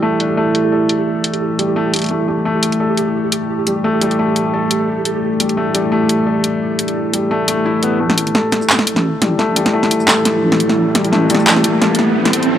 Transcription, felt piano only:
0.00 1.59 G3 medium
0.00 0.02 A3 medium
0.00 0.18 A3 medium
0.00 0.20 D4 medium
0.00 0.72 A4 medium
0.20 0.37 D4 medium
0.37 0.54 A3 medium
0.72 0.83 A4 medium
1.59 1.75 G3 medium
1.76 1.92 A3 loud
1.93 2.09 A3 medium
2.11 2.27 A3 medium
2.28 2.44 A3 medium
2.45 2.62 A3 medium
2.80 2.91 A4 medium
3.67 3.83 G3 medium
3.84 4.00 A3 medium
4.02 4.18 G3 medium
4.19 4.36 A3 medium
4.54 4.64 A4 medium
5.40 5.57 G3 medium
5.57 5.73 A3 medium
5.75 5.91 G3 medium
5.92 6.09 A3 loud
6.27 6.37 A4 medium
7.13 7.30 G3 medium
7.31 7.47 A3 loud
7.48 7.59 A3 medium
7.65 7.81 E4 medium
7.83 7.99 B3 medium
8.00 8.17 A3 loud
8.35 8.45 A4 medium
9.22 9.38 G3 medium
9.39 9.55 A3 medium
9.56 9.73 G3 loud
9.73 9.90 A3 loud
10.08 10.19 A4 medium
10.95 11.12 G3 medium
11.12 11.28 A3 loud
11.30 11.46 G3 loud
11.47 11.64 A3 loud
11.82 11.92 A4 medium

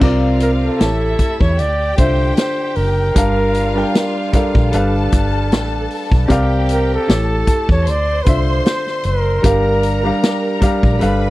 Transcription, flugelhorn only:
0.42 0.51 A#4 medium
0.65 1.43 A4 medium
1.41 1.61 C#5 medium
1.60 1.97 D5 loud
1.97 2.34 C5 loud
2.37 2.77 C5 medium
2.76 4.33 A#4 medium
6.72 6.90 A#4 medium
6.94 7.67 A4 loud
7.71 7.91 C#5 medium
7.89 8.24 D5 loud
8.23 8.30 B4 medium
8.29 8.65 C5 medium
8.65 9.07 C5 loud
9.06 10.62 A#4 medium

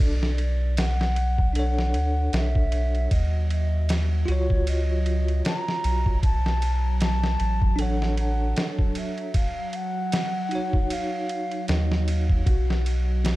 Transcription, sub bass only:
0.00 1.96 B1 loud
1.94 2.29 D2 medium
2.33 3.08 B1 loud
3.11 4.25 D#2 loud
4.28 5.42 C#2 medium
5.84 7.37 B1 medium
7.40 8.54 A1 medium
11.69 12.43 D#2 medium
12.47 13.36 B1 loud

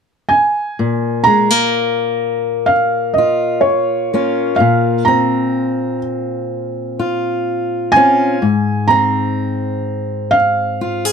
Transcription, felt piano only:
0.29 1.21 G#5 medium
1.24 2.72 A#5 medium
2.66 3.17 F5 medium
3.14 3.64 D#5 medium
3.61 4.54 C#5 medium
4.56 5.07 F5 medium
5.05 5.98 A#5 medium
7.92 8.91 G#5 medium
8.88 10.36 A#5 medium
10.31 11.12 F5 medium

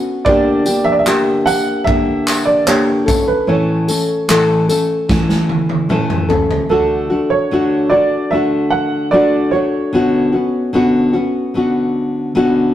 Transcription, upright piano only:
0.25 0.88 D5 medium
0.84 0.93 E5 loud
0.92 1.00 D5 medium
0.99 1.48 E5 medium
1.46 1.84 F#5 loud
1.84 2.48 E5 loud
2.45 2.67 D5 medium
2.67 3.23 C#5 medium
3.28 3.48 B4 medium
3.48 4.24 C#5 medium
6.70 7.32 A4 medium
7.30 7.93 C#5 loud
7.90 8.32 D5 medium
8.31 8.73 E5 loud
8.70 9.13 F#5 loud
9.11 9.49 D5 loud
9.51 11.10 C#5 medium

